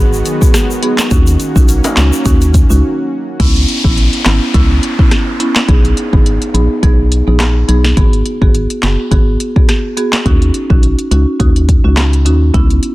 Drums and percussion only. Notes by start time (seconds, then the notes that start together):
0.13 shaker
0.25 closed hi-hat, shaker
0.42 kick, shaker
0.54 cross-stick, snare, closed hi-hat, shaker
0.71 shaker
0.83 closed hi-hat
0.99 snare, clap, shaker
1.11 kick, closed hi-hat, shaker
1.27 closed hi-hat, shaker
1.40 closed hi-hat, shaker
1.56 kick, shaker
1.69 closed hi-hat, shaker
1.84 closed hi-hat, high timbale, shaker
1.97 snare, clap, closed hi-hat, shaker
2.13 shaker
2.26 kick, closed hi-hat, shaker
2.42 closed hi-hat, shaker
2.54 kick, closed hi-hat, shaker
2.71 shaker
3.40 kick, closed hi-hat
3.56 closed hi-hat
3.68 closed hi-hat
3.85 kick
3.97 closed hi-hat
4.13 closed hi-hat
4.26 snare, clap, closed hi-hat
4.54 kick, closed hi-hat
4.83 closed hi-hat
4.99 kick
5.11 cross-stick, snare, closed hi-hat
5.40 closed hi-hat
5.56 snare, clap
5.68 kick, closed hi-hat
5.85 closed hi-hat
5.97 closed hi-hat
6.13 kick
6.26 closed hi-hat
6.42 closed hi-hat
6.55 closed hi-hat
6.83 kick, closed hi-hat
7.12 closed hi-hat
7.40 cross-stick, snare, clap, closed hi-hat
7.69 closed hi-hat
7.85 snare
7.97 kick, closed hi-hat
8.13 closed hi-hat
8.26 closed hi-hat
8.42 kick
8.55 closed hi-hat
8.70 closed hi-hat
8.83 snare, clap, closed hi-hat
9.12 kick, closed hi-hat
9.40 closed hi-hat
9.56 kick
9.69 cross-stick, snare, closed hi-hat
9.97 closed hi-hat
10.13 snare, clap
10.26 kick, closed hi-hat
10.42 closed hi-hat
10.54 closed hi-hat
10.70 kick
10.83 closed hi-hat
10.99 closed hi-hat
11.11 closed hi-hat
11.40 kick, closed hi-hat
11.56 closed hi-hat
11.69 kick, closed hi-hat
11.97 cross-stick, snare, clap, closed hi-hat
12.13 closed hi-hat
12.26 closed hi-hat
12.54 kick, closed hi-hat
12.70 closed hi-hat
12.83 closed hi-hat